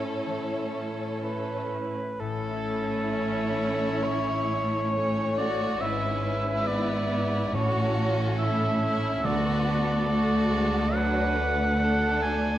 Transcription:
0.00 1.95 A2 soft
0.00 2.19 A2 soft
0.00 0.73 C#4 soft
0.00 1.95 C#4 soft
0.00 1.71 E4 soft
0.00 1.95 E4 soft
0.00 1.21 A4 soft
0.00 1.68 A4 soft
0.00 1.67 C#5 soft
0.26 2.24 E3 soft
0.74 1.70 C#4 soft
1.22 2.81 A4 soft
1.22 2.22 B4 soft
1.72 3.11 C#4 soft
2.19 5.77 A1 soft
2.19 5.86 A2 soft
2.19 5.79 A2 soft
2.19 4.90 C#4 soft
2.19 4.90 E4 soft
2.19 3.08 A4 soft
2.19 4.05 A4 medium
2.51 4.33 E4 soft
2.82 4.63 A4 soft
3.12 3.72 C#4 soft
3.12 4.94 C#5 soft
3.44 3.95 D4 soft
3.73 4.92 C#4 soft
4.03 5.85 E3 soft
4.03 5.37 C#5 medium
4.34 6.09 E4 soft
4.64 5.85 A4 soft
4.93 5.81 A3 soft
4.93 5.51 C#4 soft
4.93 5.38 C#4 soft
4.93 5.81 C#5 soft
5.23 5.73 D4 soft
5.38 5.82 F#4 soft
5.38 5.82 D5 medium
5.53 5.85 C#4 soft
5.80 7.49 G#1 medium
5.80 7.56 G#2 soft
5.80 7.49 G#2 medium
5.80 6.67 C#4 soft
5.80 6.23 E4 soft
5.80 7.54 B4 soft
5.80 6.69 E5 medium
6.10 6.94 E4 soft
6.24 7.50 E4 soft
6.39 7.56 B4 soft
6.66 7.08 B3 medium
6.66 7.23 D4 soft
6.66 7.53 D5 medium
6.96 7.44 E4 soft
7.10 7.52 B3 medium
7.24 7.56 D4 soft
7.51 9.24 A1 soft
7.51 9.24 A2 soft
7.51 8.78 A2 medium
7.51 9.28 A2 medium
7.51 9.20 C#4 soft
7.51 9.23 A4 soft
7.51 8.13 C#5 medium
7.55 8.41 F#4 soft
7.82 9.27 E4 soft
8.12 9.79 A4 soft
8.39 8.95 C#4 soft
8.39 8.82 E4 soft
8.39 9.27 E5 medium
8.68 9.16 D4 soft
8.84 9.24 E4 medium
8.96 9.28 C#4 soft
9.23 12.58 D2 medium
9.23 12.58 D3 medium
9.23 10.47 D3 medium
9.23 10.08 B3 soft
9.23 10.08 F#4 medium
9.23 10.90 A4 medium
9.23 10.96 D5 medium
9.52 11.21 F#4 soft
9.80 11.50 A4 soft
10.08 10.50 A3 medium
10.08 10.63 A3 soft
10.08 10.91 F#4 medium
10.36 10.84 B3 soft
10.50 10.93 G#3 medium
10.64 11.78 A3 soft
10.92 11.35 F#3 medium
10.92 12.58 D4 soft
10.92 11.78 D4 medium
10.92 11.78 B4 medium
10.92 12.22 F#5 medium
11.22 12.58 F#4 soft
11.36 12.58 A3 medium
11.51 12.58 A4 soft
11.79 12.35 A3 soft
11.79 12.58 D4 medium
11.79 12.58 A4 medium
12.08 12.56 B3 soft
12.22 12.58 G#5 medium
12.36 12.58 A3 soft

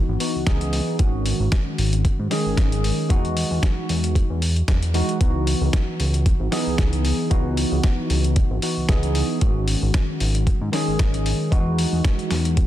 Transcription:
0.00 0.17 E3 medium
0.00 0.17 B3 medium
0.00 0.18 D#4 medium
0.00 0.18 F#4 loud
0.08 0.17 G#1 medium
0.20 0.44 E3 medium
0.20 0.44 B3 medium
0.20 0.44 D#4 medium
0.20 0.44 F#4 medium
0.20 open hi-hat loud
0.35 0.45 C#2 soft
0.46 0.81 C#2 medium
0.46 0.96 E3 medium
0.46 0.97 B3 medium
0.46 0.97 D#4 medium
0.46 0.97 G#4 loud
0.46 kick loud
0.46 snare loud
0.46 closed hi-hat medium
0.61 closed hi-hat soft
0.73 open hi-hat loud
0.98 1.33 G#1 loud
0.98 2.28 D#3 medium
0.98 2.28 G#3 medium
0.98 2.28 C#4 medium
0.98 2.29 F#4 medium
0.98 kick loud
0.98 closed hi-hat medium
1.26 open hi-hat loud
1.40 1.49 G#1 medium
1.52 kick loud
1.52 snare loud
1.52 closed hi-hat medium
1.78 2.12 G#1 medium
1.78 open hi-hat medium
1.93 closed hi-hat medium
2.05 kick loud
2.05 closed hi-hat medium
2.19 2.28 G#2 medium
2.30 3.07 D#3 medium
2.30 3.07 G#3 medium
2.30 3.07 C#4 medium
2.30 3.08 G#4 loud
2.30 snare medium
2.30 open hi-hat medium
2.46 2.55 G#1 soft
2.57 2.92 G#1 medium
2.57 kick medium
2.57 snare loud
2.57 closed hi-hat medium
2.72 closed hi-hat medium
2.84 open hi-hat medium
3.09 3.44 E2 loud
3.09 4.38 E3 medium
3.09 4.38 G#3 medium
3.09 4.39 D#4 medium
3.09 4.39 F#4 loud
3.09 kick loud
3.09 closed hi-hat medium
3.25 closed hi-hat soft
3.37 open hi-hat loud
3.51 3.59 E2 medium
3.63 kick loud
3.63 snare loud
3.63 closed hi-hat medium
3.89 4.23 E2 medium
3.89 open hi-hat loud
4.04 closed hi-hat medium
4.15 kick loud
4.15 closed hi-hat medium
4.30 4.63 E2 medium
4.42 open hi-hat loud
4.56 closed hi-hat soft
4.68 5.02 E2 medium
4.68 kick medium
4.68 snare loud
4.68 closed hi-hat medium
4.83 closed hi-hat medium
4.94 5.17 E3 medium
4.94 5.18 G#3 medium
4.94 5.18 D#4 medium
4.94 5.18 F#4 loud
4.94 open hi-hat loud
5.09 closed hi-hat soft
5.20 5.55 C#2 loud
5.20 6.49 E3 medium
5.20 6.49 B3 medium
5.20 6.50 D#4 medium
5.20 6.50 F#4 medium
5.20 kick loud
5.20 closed hi-hat medium
5.47 open hi-hat loud
5.61 5.70 C#2 medium
5.73 kick loud
5.73 snare loud
5.73 closed hi-hat medium
6.00 6.34 C#2 medium
6.00 open hi-hat loud
6.14 closed hi-hat soft
6.26 kick loud
6.26 closed hi-hat medium
6.40 6.49 G#1 medium
6.51 7.28 E3 medium
6.51 7.28 B3 medium
6.51 7.29 D#4 medium
6.51 7.29 G#4 loud
6.51 snare medium
6.51 open hi-hat loud
6.67 6.76 C#2 soft
6.78 7.13 C#2 medium
6.78 kick loud
6.78 snare loud
6.78 closed hi-hat medium
6.93 closed hi-hat medium
7.05 open hi-hat loud
7.30 7.65 C#2 loud
7.30 8.59 E3 medium
7.30 8.60 B3 medium
7.30 8.60 D#4 medium
7.30 8.60 F#4 loud
7.30 kick loud
7.30 closed hi-hat medium
7.57 open hi-hat loud
7.72 7.80 C#2 medium
7.84 kick loud
7.84 snare loud
7.84 closed hi-hat medium
8.10 8.44 C#2 medium
8.10 open hi-hat loud
8.24 closed hi-hat soft
8.36 kick loud
8.36 closed hi-hat medium
8.51 8.59 G#1 medium
8.62 8.86 E3 medium
8.62 8.86 B3 medium
8.62 8.86 D#4 medium
8.62 8.87 F#4 medium
8.62 open hi-hat loud
8.77 8.87 C#2 soft
8.89 9.23 C#2 medium
8.89 9.39 E3 medium
8.89 9.39 B3 medium
8.89 9.39 D#4 medium
8.89 9.39 G#4 loud
8.89 kick loud
8.89 snare loud
8.89 closed hi-hat medium
9.03 closed hi-hat medium
9.15 open hi-hat loud
9.41 9.76 G#1 loud
9.41 10.70 D#3 medium
9.41 10.70 G#3 medium
9.41 10.70 C#4 medium
9.41 10.71 F#4 medium
9.41 kick loud
9.41 closed hi-hat medium
9.68 open hi-hat loud
9.82 9.91 G#1 medium
9.94 kick loud
9.94 snare loud
9.94 closed hi-hat medium
10.20 10.55 G#1 medium
10.20 open hi-hat loud
10.35 closed hi-hat soft
10.47 kick loud
10.47 closed hi-hat medium
10.61 10.70 G#2 medium
10.72 11.49 D#3 medium
10.72 11.49 G#3 medium
10.72 11.50 C#4 medium
10.72 11.50 G#4 loud
10.72 snare medium
10.72 open hi-hat loud
10.88 10.97 G#1 soft
10.99 11.33 G#1 medium
10.99 kick loud
10.99 snare loud
10.99 closed hi-hat medium
11.14 closed hi-hat medium
11.26 open hi-hat loud
11.51 11.86 E2 medium
11.51 12.67 E3 medium
11.51 12.67 G#3 medium
11.51 12.67 D#4 medium
11.51 12.67 F#4 loud
11.51 kick loud
11.51 closed hi-hat medium
11.78 open hi-hat loud
11.93 12.01 E2 medium
12.04 kick loud
12.04 snare loud
12.04 closed hi-hat medium
12.19 closed hi-hat soft
12.31 12.65 E2 medium
12.31 snare medium
12.31 open hi-hat loud
12.45 closed hi-hat soft
12.57 kick loud
12.57 closed hi-hat medium

